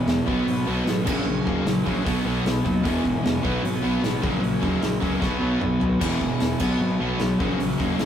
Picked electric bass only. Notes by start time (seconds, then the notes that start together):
0.06 E1
0.28 B1
0.47 G#1
0.67 B1
0.86 A1
1.07 A#1
1.26 A#1
1.47 D#2
1.65 A#1
1.86 A#1
2.06 B1
2.25 B1
2.45 B1
2.65 D#2
2.85 E1
3.05 G#1
3.24 E1
3.44 B1
3.63 G#1
3.83 B1
4.02 A1
4.23 A#1
4.42 A#1
4.62 D#2
4.81 A#1
5.02 C#2
5.22 B1
5.41 B1
5.61 B1
5.80 B1
6.01 E1
6.21 G#1
6.40 E1
6.61 B1
6.79 G#1
7.00 B1
7.19 B1
7.40 A#1
7.59 A#1
7.80 D#2
8.00 A#1